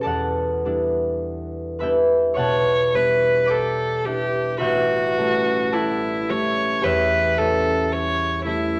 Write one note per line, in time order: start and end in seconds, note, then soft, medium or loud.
0.00 0.10 B2 soft
0.00 0.64 G3 soft
0.00 0.64 B3 soft
0.00 2.65 G4 medium
0.00 3.91 A4 medium
0.00 3.46 D5 medium
0.00 1.80 E5 medium
0.00 1.80 G5 medium
0.00 2.35 A5 loud
0.05 3.95 E2 medium
0.05 2.35 F#5 medium
0.65 1.80 G3 soft
0.65 1.81 B3 soft
0.65 1.81 D4 soft
0.65 1.81 E4 soft
1.79 2.93 G3 soft
1.79 2.93 B3 soft
1.79 2.93 D4 soft
1.79 2.94 E4 medium
1.79 4.57 B4 medium
1.79 4.58 E5 medium
1.79 3.47 G5 medium
1.79 3.47 B5 medium
2.34 4.64 B2 medium
2.34 6.24 C#5 medium
2.34 4.64 F#5 medium
2.34 4.25 C#6 loud
2.38 2.96 C#5 medium
2.38 5.71 A5 medium
2.93 4.04 G3 soft
2.93 4.05 B3 soft
2.93 4.05 D4 medium
2.93 4.05 E4 medium
2.93 3.51 B4 medium
3.46 4.06 A4 medium
3.46 4.64 D5 medium
3.46 4.58 G5 medium
3.46 4.64 D6 loud
3.51 4.57 B5 medium
4.05 5.16 G3 medium
4.05 7.96 B3 soft
4.05 4.66 D4 medium
4.05 5.17 E4 medium
4.05 4.60 G4 medium
4.57 8.50 A1 medium
4.57 5.74 F#4 medium
4.57 8.47 B4 medium
4.57 6.82 E5 medium
4.57 8.48 B5 loud
4.61 6.81 G5 medium
5.17 6.28 G3 medium
5.17 6.29 A3 medium
5.17 6.29 C#4 medium
5.17 6.29 E4 medium
5.72 6.31 E4 medium
5.72 8.80 A4 medium
5.72 8.80 D5 medium
5.72 8.80 F#5 medium
5.72 8.80 A5 medium
6.29 7.37 G3 medium
6.29 7.37 A3 medium
6.29 7.38 C#4 soft
6.29 7.38 E4 medium
6.29 6.85 C#5 medium
6.81 8.80 E2 medium
6.81 8.80 G4 medium
6.81 7.39 B4 medium
6.81 8.80 C#5 medium
6.81 8.80 G5 loud
6.85 8.80 E5 medium
7.38 8.44 G3 medium
7.38 8.45 A3 soft
7.38 8.45 C#4 medium
7.38 8.45 E4 medium
7.38 7.93 A4 medium
7.92 8.45 C#5 medium
8.45 8.80 G3 soft
8.45 8.80 A3 medium
8.45 8.80 C#4 medium
8.45 8.80 E4 medium